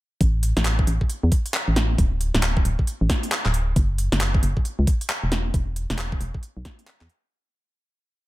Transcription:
0.21 0.53 A1 medium
0.21 kick loud
0.21 closed hi-hat medium
0.43 open hi-hat loud
0.57 0.85 A1 medium
0.57 snare medium
0.57 closed hi-hat medium
0.65 clap loud
0.65 closed hi-hat medium
0.79 kick loud
0.87 0.99 A1 medium
0.87 open hi-hat medium
1.01 kick medium
1.10 closed hi-hat medium
1.23 1.30 E2 loud
1.32 kick loud
1.32 open hi-hat loud
1.46 closed hi-hat medium
1.54 clap loud
1.68 1.96 A1 medium
1.76 snare medium
1.76 open hi-hat medium
1.98 2.31 D1 medium
1.98 kick loud
1.98 closed hi-hat medium
2.21 open hi-hat loud
2.34 2.63 D1 medium
2.34 snare medium
2.34 closed hi-hat medium
2.43 clap loud
2.43 closed hi-hat medium
2.57 kick loud
2.65 2.77 D1 medium
2.65 open hi-hat medium
2.79 kick medium
2.87 closed hi-hat medium
3.01 3.08 A1 loud
3.10 kick loud
3.10 snare medium
3.10 open hi-hat loud
3.23 closed hi-hat medium
3.32 clap loud
3.46 3.74 D1 medium
3.46 clap medium
3.54 open hi-hat medium
3.76 4.09 F#1 loud
3.76 kick loud
3.76 closed hi-hat medium
3.98 open hi-hat loud
4.12 4.41 F#1 medium
4.12 snare medium
4.12 closed hi-hat medium
4.21 clap loud
4.21 closed hi-hat medium
4.34 kick loud
4.43 4.54 F#1 medium
4.43 open hi-hat medium
4.57 kick medium
4.65 closed hi-hat medium
4.79 4.86 C#2 loud
4.87 kick loud
4.87 open hi-hat loud
5.01 closed hi-hat medium
5.09 clap loud
5.23 5.52 E1 medium
5.32 snare medium
5.32 open hi-hat medium
5.54 5.86 E1 medium
5.54 kick loud
5.54 closed hi-hat medium
5.76 open hi-hat loud
5.90 6.18 E1 medium
5.90 snare medium
5.90 closed hi-hat medium
5.98 clap loud
5.98 closed hi-hat medium
6.12 kick loud
6.21 6.32 E1 medium
6.21 open hi-hat medium
6.34 kick medium
6.43 closed hi-hat medium
6.57 6.64 B1 loud
6.65 kick loud
6.65 snare medium
6.65 open hi-hat loud
6.79 closed hi-hat medium
6.87 clap loud
7.01 7.08 E2 medium
7.01 clap medium
7.09 open hi-hat medium

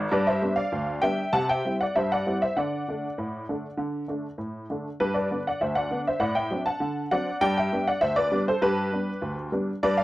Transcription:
0.12 0.38 G2 loud
0.12 0.27 B4 medium
0.12 0.28 D5 medium
0.27 0.56 C5 medium
0.27 0.52 E5 medium
0.42 0.59 G3 medium
0.42 0.59 B3 medium
0.42 0.60 D4 medium
0.56 1.00 D5 medium
0.56 1.00 F5 medium
0.72 0.99 D2 medium
1.02 1.20 G3 medium
1.02 1.20 B3 medium
1.02 1.19 D4 medium
1.02 1.32 E5 medium
1.02 1.32 G5 loud
1.33 1.59 C3 medium
1.33 1.48 F#5 medium
1.33 1.49 A5 loud
1.49 1.79 E5 medium
1.49 1.74 G5 loud
1.65 1.82 G3 soft
1.65 1.82 C4 medium
1.65 1.82 E4 soft
1.81 1.96 D5 medium
1.81 1.96 F#5 medium
1.96 2.22 G2 medium
1.96 2.10 C5 medium
1.96 2.11 E5 medium
2.12 2.40 D5 medium
2.12 2.40 F#5 medium
2.27 2.43 G3 medium
2.27 2.43 C4 soft
2.27 2.43 E4 medium
2.42 2.56 C5 medium
2.42 2.57 E5 medium
2.57 2.82 D3 medium
2.57 4.36 D5 medium
2.57 4.03 F#5 medium
2.88 3.04 D3 soft
2.88 3.05 A3 soft
2.88 3.05 D4 medium
3.18 3.44 A2 medium
3.49 3.65 D3 soft
3.49 3.65 A3 soft
3.49 3.65 D4 soft
3.77 4.03 D3 medium
4.08 4.25 D3 soft
4.08 4.25 A3 soft
4.08 4.26 D4 soft
4.38 4.64 A2 medium
4.70 4.87 D3 medium
4.70 4.87 A3 soft
4.70 4.87 D4 soft
5.00 5.26 G2 medium
5.00 5.15 G4 medium
5.00 5.15 B4 medium
5.14 5.44 B4 medium
5.14 5.39 D5 medium
5.31 5.47 D3 soft
5.31 5.47 B3 soft
5.31 5.48 D4 soft
5.47 5.61 D5 medium
5.47 5.62 F#5 medium
5.61 5.87 D2 medium
5.61 5.76 C5 medium
5.61 5.76 E5 medium
5.75 6.05 D5 medium
5.75 6.00 F#5 medium
5.91 6.07 D3 soft
5.91 6.08 B3 soft
5.91 6.09 D4 medium
6.07 6.21 C5 medium
6.07 6.22 E5 medium
6.20 6.46 A2 medium
6.20 6.35 D5 medium
6.20 6.36 F#5 medium
6.35 6.64 E5 medium
6.35 6.60 G5 medium
6.51 6.67 F#3 soft
6.51 6.68 C4 soft
6.51 6.68 D4 soft
6.66 7.09 F#5 medium
6.66 7.02 A5 medium
6.80 7.06 D3 medium
7.11 7.28 F#3 medium
7.11 7.28 C4 medium
7.11 7.29 D4 medium
7.11 7.40 D5 medium
7.11 7.40 F#5 loud
7.41 7.67 G2 loud
7.41 7.56 D5 medium
7.41 7.56 G5 loud
7.58 7.86 E5 medium
7.58 7.86 G5 medium
7.73 7.89 G3 medium
7.73 7.89 B3 soft
7.73 7.90 D4 medium
7.88 8.02 D5 medium
7.88 8.03 F#5 medium
8.01 8.27 D2 medium
8.01 8.16 C5 medium
8.01 8.17 E5 loud
8.16 8.45 B4 medium
8.16 8.41 D5 loud
8.32 8.48 G3 medium
8.32 8.49 B3 medium
8.32 8.48 D4 medium
8.48 8.62 A4 medium
8.48 8.63 C5 medium
8.62 8.88 G2 medium
8.62 9.49 G4 medium
8.62 9.35 B4 loud
8.92 9.09 G3 soft
8.92 9.09 B3 soft
8.92 9.10 D4 medium
9.22 9.48 D2 medium
9.52 9.69 G3 medium
9.52 9.69 B3 medium
9.52 9.70 D4 medium
9.83 10.04 G2 medium
9.83 9.98 B4 medium
9.83 9.98 D5 loud
9.97 10.04 D5 medium
9.97 10.04 F5 loud

